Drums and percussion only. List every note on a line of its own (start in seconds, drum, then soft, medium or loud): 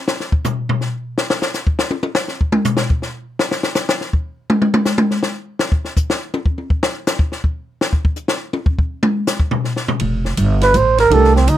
0.08 snare loud
0.20 snare soft
0.32 kick medium
0.44 floor tom medium
0.44 hi-hat pedal medium
0.69 floor tom medium
0.81 snare soft
1.18 snare medium
1.30 snare medium
1.42 snare medium
1.54 snare medium
1.54 hi-hat pedal medium
1.67 kick medium
1.79 snare loud
1.91 high tom medium
2.03 high tom medium
2.15 snare loud
2.28 snare soft
2.41 kick medium
2.52 mid tom medium
2.65 floor tom loud
2.65 hi-hat pedal medium
2.77 snare loud
2.90 kick medium
3.02 snare soft
3.39 snare loud
3.51 snare medium
3.63 snare medium
3.75 snare medium
3.75 hi-hat pedal medium
3.89 snare loud
4.01 snare soft
4.13 kick medium
4.50 mid tom loud
4.62 mid tom medium
4.74 mid tom loud
4.85 snare medium
4.85 hi-hat pedal medium
4.98 mid tom loud
5.11 snare soft
5.23 snare medium
5.59 snare loud
5.72 kick medium
5.85 snare soft
5.97 kick medium
5.97 hi-hat pedal medium
6.10 snare loud
6.34 high tom medium
6.46 kick medium
6.58 high tom soft
6.70 kick medium
6.83 snare loud
7.07 snare loud
7.07 hi-hat pedal medium
7.19 kick medium
7.32 snare soft
7.44 kick medium
7.81 snare medium
7.93 kick medium
8.05 kick medium
8.16 hi-hat pedal medium
8.28 snare loud
8.53 high tom medium
8.66 kick medium
8.79 kick medium
9.03 mid tom loud
9.27 snare loud
9.27 hi-hat pedal medium
9.40 kick medium
9.51 floor tom loud
9.64 snare soft
9.76 snare medium
9.88 floor tom loud
10.00 ride medium
10.25 snare soft
10.37 hi-hat pedal soft
10.37 ride medium
10.61 snare soft
10.61 ride soft
10.74 hi-hat pedal medium
10.74 ride medium
10.98 snare soft
10.98 ride soft
11.11 ride medium
11.24 snare soft
11.36 snare soft
11.48 hi-hat pedal medium
11.48 ride medium